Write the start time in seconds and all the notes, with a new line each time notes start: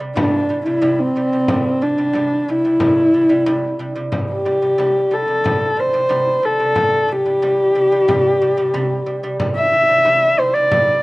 0.00 C3 G3
0.16 C3 G3 D4, frame drum
0.49 C3 G3
0.66 C3 G3 E4, frame drum
0.82 C3 G3, frame drum
0.99 C4, frame drum
1.16 C3 G3
1.33 C3 G3
1.48 C3 G3, frame drum
1.81 C3 G3 D4
1.98 C3 G3, frame drum
2.14 C3 G3, frame drum
2.48 C3 G3 E4
2.65 C3 G3
2.80 C3 G3, frame drum
3.14 C3 G3
3.29 C3 G3
3.46 C3 G3, frame drum
3.63 frame drum
3.79 C3 G3
3.95 C3 G3
4.12 C3 G3, frame drum
4.32 G4
4.45 C3 G3, frame drum
4.62 C3 G3, frame drum
4.78 C3 G3, frame drum
5.11 C3 G3 A4
5.27 C3 G3
5.44 C3 G3, frame drum
5.76 C3 G3 C5
5.93 C3 G3, frame drum
6.09 C3 G3, frame drum
6.27 frame drum
6.42 C3 G3 A4
6.59 C3 G3
6.75 C3 G3, frame drum
7.08 C3 G3
7.12 G4
7.25 C3 G3, frame drum
7.42 C3 G3, frame drum
7.75 C3 G3
7.92 C3 G3
8.08 C3 G3, frame drum
8.42 C3 G3
8.57 C3 G3, frame drum
8.74 C3 G3, frame drum
8.91 frame drum
9.06 C3 G3
9.23 C3 G3
9.40 C3 G3, frame drum
9.56 E5
9.72 C3 G3
9.89 C3 G3, frame drum
10.05 C3 G3, frame drum
10.38 C3 G3 C5
10.54 C3 G3 D5
10.71 C3 G3, frame drum